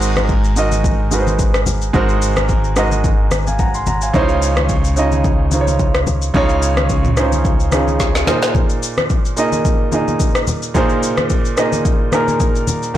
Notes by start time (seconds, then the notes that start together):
Already playing: G#1 G#3 D#4 F#4 A#4 C5
0.02 shaker
0.16 cross-stick, high conga, shaker
0.29 kick, shaker
0.44 shaker
0.56 G#3 D#4 F#4 A#4 D#5, shaker
0.71 high conga, shaker
0.84 kick, shaker
1.11 G#3 D#4 F#4 A#4 B4, high conga, shaker
1.20 C5
1.27 high conga, shaker
1.39 kick, shaker
1.54 cross-stick, shaker
1.66 high conga, low conga, shaker
1.81 shaker
1.93 G#1 G#3 D#4 F#4 A#4 C5, kick, low conga, shaker
2.09 shaker
2.22 shaker
2.37 cross-stick, high conga, shaker
2.49 kick, shaker
2.64 shaker
2.76 G#3 D#4 F#4 A#4 D#5, cross-stick, shaker
2.92 high conga, shaker
3.04 kick, shaker
3.31 cross-stick, high conga, shaker
3.47 F5 G#5, high conga, shaker
3.59 F#5 A#5, kick, shaker
3.74 G#5 C6, shaker
3.86 F#5 A#5, high conga, low conga, shaker
4.01 F5 G#5, shaker
4.13 C#2 C#3 C#4 D#4 E4 C5, kick, low conga, shaker
4.22 F4
4.29 shaker
4.42 shaker
4.57 cross-stick, high conga, shaker
4.69 kick, shaker
4.84 shaker
4.96 C#3 C#4 D#4 F4 D#5, shaker
5.12 high conga, shaker
5.24 kick, shaker
5.51 C#3 C#4 D#4 F4 C5, high conga, shaker
5.61 C#5
5.67 high conga, shaker
5.79 kick, shaker
5.95 cross-stick, shaker
6.07 high conga, low conga, shaker
6.22 shaker
6.34 C#2 C#3 C#4 D#4 F4 C#5, kick, low conga, shaker
6.49 shaker
6.62 shaker
6.77 cross-stick, high conga, shaker
6.89 kick, shaker
7.05 mid tom, high conga, shaker
7.16 C#3 C#4 D#4 F4 C5, cross-stick, shaker
7.32 high conga, shaker
7.45 kick, shaker
7.60 shaker
7.71 C#3 C#4 D#4 F4 G#4, cross-stick, high conga, shaker
7.88 high conga, shaker
8.00 kick, snare, shaker
8.15 snare, shaker
8.26 A#2 A#3 D#4 G#4 C5, snare, high conga, low conga, shaker
8.42 snare, shaker
8.54 kick, low conga, shaker
8.70 shaker
8.83 shaker
8.97 cross-stick, high conga, shaker
9.10 kick, shaker
9.25 shaker
9.37 A#2 A#3 D#4 G#4 D#5, shaker
9.52 high conga, shaker
9.65 kick, shaker
9.92 A#2 A#3 D#4 G#4 D#5, high conga, shaker
10.08 high conga, shaker
10.20 kick, shaker
10.35 cross-stick, shaker
10.47 high conga, low conga, shaker
10.62 shaker
10.74 A#2 A#3 D#4 G#4 C5, kick, low conga, shaker
10.89 shaker
11.03 shaker
11.17 cross-stick, high conga, shaker
11.30 kick, shaker
11.45 shaker
11.56 A#2 A#3 D#4 G#4 D#5, cross-stick, shaker
11.72 high conga, shaker
11.85 kick, shaker
12.12 A#2 A#3 D#4 G#4 A#4, cross-stick, high conga, shaker
12.28 high conga, shaker
12.40 kick, shaker
12.55 shaker
12.68 high conga, low conga, shaker
12.83 shaker
12.94 D#3